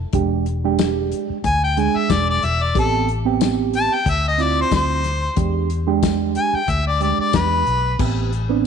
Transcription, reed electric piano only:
0.13 0.45 G#3 medium
0.13 0.45 D4 medium
0.13 0.45 G4 medium
0.64 1.36 G#3 medium
0.64 1.37 D4 medium
0.64 1.37 G4 loud
1.77 2.40 G#3 medium
1.77 2.40 D4 medium
1.77 2.41 G#4 medium
2.74 3.06 B3 medium
2.74 3.07 C4 medium
2.74 3.07 G4 medium
3.25 3.98 B3 medium
3.25 3.98 C4 medium
3.25 3.98 G4 loud
4.38 5.01 C4 medium
4.38 5.02 E4 medium
4.38 5.02 F4 medium
5.36 5.68 G#3 medium
5.36 5.68 D4 medium
5.36 5.69 G4 medium
5.87 6.60 G#3 medium
5.87 6.60 D4 medium
5.87 6.60 G4 medium
7.00 7.64 G#3 medium
7.00 7.64 D4 medium
7.00 7.64 G4 medium
7.99 8.30 B3 medium
7.99 8.31 C4 medium
7.99 8.31 G4 medium
8.49 8.67 B3 medium
8.49 8.67 C4 medium
8.49 8.67 D4 medium

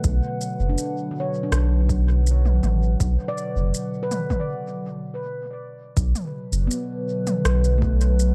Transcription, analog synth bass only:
0.04 0.21 B1 medium
0.60 0.76 F#1 loud
1.52 2.60 B1 loud
2.63 2.96 A1 medium
3.00 3.17 B1 loud
3.56 3.72 F#1 loud
5.97 6.13 B1 loud
6.52 6.68 F#1 loud
7.45 8.35 B1 loud

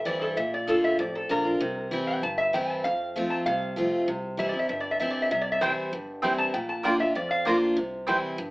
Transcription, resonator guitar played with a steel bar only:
0.06 0.21 D5 loud
0.22 0.37 A4 medium
0.37 0.52 E5 medium
0.54 0.68 D5 medium
0.69 0.84 A4 medium
0.84 0.99 E5 medium
1.00 1.15 D5 medium
1.15 1.30 A4 medium
1.31 1.90 A#4 loud
2.07 2.22 G5 medium
2.23 2.38 A5 loud
2.38 2.53 E5 loud
2.54 2.69 G5 loud
2.69 2.84 A5 loud
2.84 3.14 F5 loud
3.30 3.45 A5 medium
3.46 4.06 F5 loud
4.39 4.48 E5 medium
4.49 4.59 D5 medium
4.59 4.68 E5 medium
4.69 4.79 E5 medium
4.80 4.90 D5 medium
4.91 4.99 E5 medium
5.00 5.10 E5 loud
5.11 5.20 D5 medium
5.22 5.30 E5 medium
5.31 5.41 E5 loud
5.41 5.51 D5 medium
5.52 5.62 E5 loud
5.61 5.91 C5 medium
6.38 6.53 A5 loud
6.54 6.69 G5 medium
6.69 6.84 A5 loud
6.85 7.00 G5 medium
7.00 7.15 E5 medium
7.16 7.31 D5 loud
7.31 7.46 F5 loud

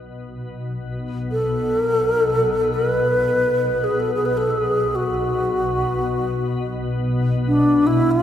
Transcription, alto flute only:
1.32 1.81 A4 medium
1.81 1.94 A#4 medium
1.94 2.08 A4 medium
2.08 2.21 A#4 medium
2.21 2.76 A4 medium
2.74 3.85 B4 medium
3.84 4.01 G#4 medium
4.00 4.12 A4 medium
4.14 4.27 G#4 medium
4.26 4.39 B4 medium
4.37 4.52 A4 medium
4.50 4.97 G#4 medium
4.95 6.74 F#4 medium
7.48 7.88 D4 medium
7.87 8.13 E4 medium
8.11 8.23 F#4 medium

